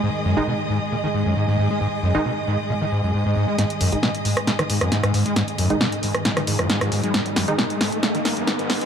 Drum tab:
HH |----------------|----------------|xxox-xoxxxoxxxox|xxox-xoxxxoxxxox|
SD |----------------|----------------|o---o--ror-ror--|o---o--ror-ror--|

HH |xxox-xoxxxoxxxox|
SD |o-o-o-o-o-o-o-o-|